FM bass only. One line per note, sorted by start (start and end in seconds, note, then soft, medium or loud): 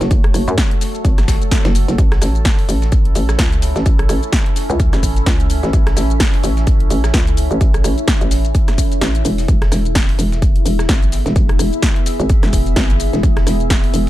0.01 0.09 F#1 loud
0.11 0.33 F#1 loud
0.34 0.46 F#1 loud
0.48 0.56 F#2 loud
1.05 1.39 G#1 loud
1.65 1.86 F#1 loud
1.88 1.97 F#1 loud
1.98 2.20 A1 medium
2.22 2.67 A1 loud
2.69 3.14 A1 loud
3.16 3.37 A1 loud
3.39 3.74 C#2 loud
3.76 3.84 A1 loud
3.86 4.08 A1 medium
4.09 4.21 A1 loud
4.70 4.91 C#2 loud
4.93 5.25 A1 loud
5.26 5.61 C#2 loud
5.63 5.72 A1 loud
5.73 5.95 A1 medium
5.97 6.42 A1 medium
6.44 6.89 A1 loud
6.91 7.12 A1 loud
7.14 7.49 C#2 loud
7.51 7.59 A1 loud
7.61 7.83 A1 medium
7.84 7.96 A1 loud
8.21 8.53 A1 loud
9.02 9.23 A1 loud
9.25 9.47 E1 loud
9.48 9.70 E1 medium
9.72 10.17 E1 loud
10.19 10.64 E1 loud
10.66 10.87 E1 loud
10.89 11.24 G#1 loud
11.26 11.34 E1 loud
11.36 11.58 E1 medium
11.59 11.71 E1 loud
12.20 12.41 G#1 loud
12.43 12.75 E1 loud
12.77 13.11 G#1 loud
13.13 13.22 E1 loud
13.23 13.45 E1 medium
13.47 13.92 E1 loud
13.94 14.10 E1 loud